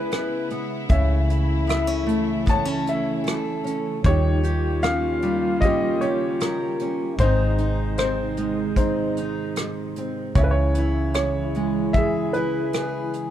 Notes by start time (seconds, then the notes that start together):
Already playing: C#2 C#3 G#3 B3 E4 B4
0.11 E4, cross-stick, closed hi-hat
0.50 B3, closed hi-hat
0.89 C#2 C#3 E3 A3 E4 C#5 E5, kick, closed hi-hat
1.30 E4, closed hi-hat
1.67 B3 E5, cross-stick, closed hi-hat
1.87 C#4
2.06 A3, closed hi-hat
2.46 B3 A5, kick, closed hi-hat
2.51 C#5
2.65 C#4
2.87 E4 E5, closed hi-hat
3.24 A4, cross-stick, closed hi-hat
3.64 C#4, closed hi-hat
4.04 D#2 D#3 G3 A#3 F4 G4 C#5, kick, closed hi-hat
4.43 G4, closed hi-hat
4.82 C#4 F5, cross-stick, closed hi-hat
5.22 G3, closed hi-hat
5.61 C#4 D#5, kick, closed hi-hat
5.65 G4
6.01 G4 C#5, closed hi-hat
6.40 A#4, cross-stick, closed hi-hat
6.79 C#4, closed hi-hat
7.17 G#1 G#2 C3 D#3 G#3 D#4 C5, kick, closed hi-hat
7.21 C4 D#4
7.58 D#4, closed hi-hat
7.98 C4 C5, cross-stick, closed hi-hat
8.37 G#3, closed hi-hat
8.76 C4 D#4 C5, kick, closed hi-hat
9.17 D#4, closed hi-hat
9.56 cross-stick, closed hi-hat
9.96 C4, closed hi-hat
10.35 C#2 C#3 E3 G#3 E4 C#5, kick, closed hi-hat
10.43 B4
10.51 C#5
10.74 E4, closed hi-hat
11.14 C#5, cross-stick, closed hi-hat
11.54 G#3, closed hi-hat
11.93 E5, kick, closed hi-hat
11.97 G#4
12.33 E4 B4, closed hi-hat
12.73 G#4, cross-stick, closed hi-hat
13.13 closed hi-hat